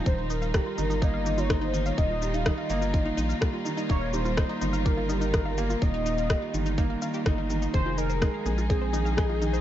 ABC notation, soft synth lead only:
X:1
M:4/4
L:1/16
Q:1/4=125
K:Ebmix
V:1 name="Soft synth lead"
c2 B6 e3 d c3 d | e3 f e6 z6 | d2 c6 B8 | e6 z8 z2 |
c2 B4 z2 A8 |]